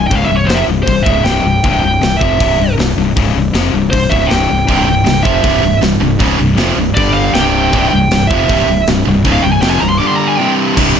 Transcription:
0.07 C#2 G5
0.11 C#1 G#2 C#3, kick, open hi-hat
0.16 F5
0.25 E5
0.29 C1 C2 G2
0.37 C#5
0.47 F1 F2 C3 F3 C5, snare, open hi-hat
0.54 E5
0.67 C1 C2 G2
0.83 C2 G2 C5
0.87 C1, kick, open hi-hat
1.03 C#1 C#2 G#2 E5, kick
1.07 C#3
1.24 C1 C2 G2 C3 G5, snare, open hi-hat
1.44 C1 C2 G2
1.64 C1 C2 G2 C3, kick, open hi-hat
1.80 C1 C2 G2 G5
2.01 C1 C2 G2, snare, open hi-hat
2.17 F2 E5
2.21 F1 C3 F3, kick
2.40 C1 C2 G2 C3, kick, open hi-hat
2.60 C1 C2 G2
2.77 C1 C2 G2, snare, open hi-hat
2.98 C1 C2 G2
3.16 C#1 C#2 G#2 C#3, kick, open hi-hat
3.35 C1 C2 G2
3.53 F1 F2 C3 F3, snare, open hi-hat
3.74 C1 C2 G2
3.90 C1 C2 G2 C5, kick, open hi-hat
4.10 C#1 C#2 G#2 C#3 E5, kick
4.26 C2 G2 C3 G5
4.30 C1, snare, open hi-hat
4.49 C1 C2 G2
4.67 C1 C2 G2 C3, kick, open hi-hat
4.85 C1 C2 G2 G5
5.04 C1 C2 G2, snare, open hi-hat
5.22 F1 F2 C3 F3 E5, kick
5.43 C1 C2 G2 C3, kick, open hi-hat
5.62 C1 C2 G2
5.81 C1 C2 G2, snare, open hi-hat
6.00 C1 C2 G2
6.19 C#1 C#2 G#2 C#3, kick, open hi-hat
6.39 C1 C2 G2
6.57 F1 F2 C3 F3, snare, open hi-hat
6.76 C1 C2 G2
6.95 G1 G2 D3 G3 D5, kick, open hi-hat
7.14 F5
7.33 C1 C2 G2 C3 G5, snare, open hi-hat
7.73 C1 C2 G2 C3, kick, open hi-hat
7.89 C1 C2 G2 G5
8.11 C1 C2 G2, snare, open hi-hat
8.27 F1 F2 C3 E5, kick
8.32 F3
8.49 C1 C2 G2 C3, kick, open hi-hat
8.67 C1 C2 G2
8.87 C1 C2 G2, snare, open hi-hat
9.07 C1 C2 G2
9.25 C#1 C#2 G#2 C#3, kick, open hi-hat
9.32 F5
9.43 C1 C2 G2 G5
9.52 G#5
9.62 F1 F2 C3 F3 G5, snare, open hi-hat
9.70 G#5
9.80 C1 C2 G2 A#5
9.89 C6
9.98 G2 D3 G3 D6
10.07 C6
10.16 A#5
10.27 G#5
10.38 C2 G2 C3 G5
10.77 C1 C2 G2 C3, kick, crash
10.96 C1 C2 G2

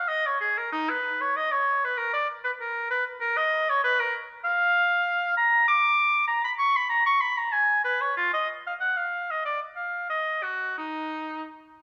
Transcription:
0.08 D#5
0.26 C#5
0.40 G#4
0.58 A#4
0.72 D#4
0.89 B4
1.21 C#5
1.36 D#5
1.51 C#5
1.84 B4
1.97 A#4
2.13 D5
2.44 B4
2.60 A#4
2.90 B4
3.20 A#4
3.37 D#5
3.69 C#5
3.83 B4
4.00 A#4
4.45 F5
5.37 A#5
5.68 D6
6.28 A#5
6.44 B5
6.58 C#6
6.76 B5
6.89 A#5
7.06 C#6
7.21 B5
7.37 A#5
7.52 G#5
7.84 B4
8.01 C#5
8.17 F4
8.33 D#5
8.67 F5
8.80 F#5
8.97 F5
9.31 D#5
9.45 D5
9.76 F5
10.10 D#5
10.43 F#4
10.78 D#4

